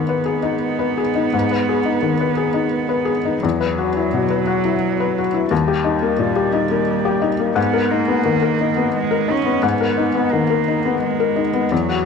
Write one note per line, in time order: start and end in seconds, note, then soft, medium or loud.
0.00 1.29 G#2 soft
0.00 0.19 D#3 soft
0.00 3.40 B3 soft
0.00 0.43 D#4 soft
0.00 0.26 G#4 soft
0.00 0.09 B4 soft
0.09 0.38 B4 soft
0.26 0.55 G#4 soft
0.43 1.01 D#4 soft
0.79 1.08 B4 soft
0.98 1.26 G#4 soft
1.15 1.44 D#4 soft
1.33 3.39 G#2 soft
1.51 1.79 B4 soft
1.69 1.97 G#4 soft
1.86 2.14 D#4 soft
2.02 2.31 D#3 soft
2.20 2.48 B4 soft
2.37 2.65 G#4 soft
2.54 3.11 D#4 soft
2.89 3.18 B4 soft
3.05 3.35 G#4 soft
3.25 3.43 D#4 soft
3.43 5.47 E2 soft
3.43 5.48 F#3 medium
3.61 3.88 B4 soft
3.78 4.06 F#4 soft
3.97 4.24 E4 soft
4.14 4.41 B2 soft
4.30 4.58 B4 soft
4.47 4.75 F#4 soft
4.65 5.20 E4 soft
5.00 5.27 B4 soft
5.18 5.45 F#4 soft
5.34 5.51 E4 soft
5.51 7.53 D#2 medium
5.51 7.53 G3 medium
5.68 5.95 G4 soft
5.84 6.12 D#4 soft
6.02 6.30 A#3 soft
6.19 6.47 A#2 soft
6.36 6.64 G4 soft
6.53 6.81 D#4 soft
6.71 7.26 A#3 soft
7.05 7.33 G4 soft
7.22 7.50 D#4 soft
7.39 7.57 A#3 soft
7.56 9.58 G#2 medium
7.56 7.92 B3 medium
7.73 8.01 A#4 soft
7.91 8.94 A#3 medium
7.91 8.19 D#4 soft
8.08 8.36 B3 soft
8.25 8.53 D#3 soft
8.42 8.70 A#4 soft
8.61 8.88 D#4 soft
8.77 9.32 B3 soft
8.96 9.32 G#3 medium
9.11 9.39 A#4 soft
9.28 9.64 C#4 medium
9.28 9.56 D#4 soft
9.45 9.73 B3 soft
9.63 11.67 G#2 medium
9.63 10.34 B3 soft
9.81 10.08 A#4 soft
9.97 10.25 D#4 soft
10.15 10.43 B3 soft
10.32 10.60 D#3 soft
10.32 11.01 A#3 soft
10.50 10.78 A#4 soft
10.68 10.95 D#4 soft
10.85 11.40 B3 soft
11.02 11.74 G#3 soft
11.20 11.47 A#4 soft
11.36 11.64 D#4 soft
11.53 11.71 B3 soft
11.72 12.05 E2 soft
11.72 12.05 F#3 soft
11.89 12.05 F#4 soft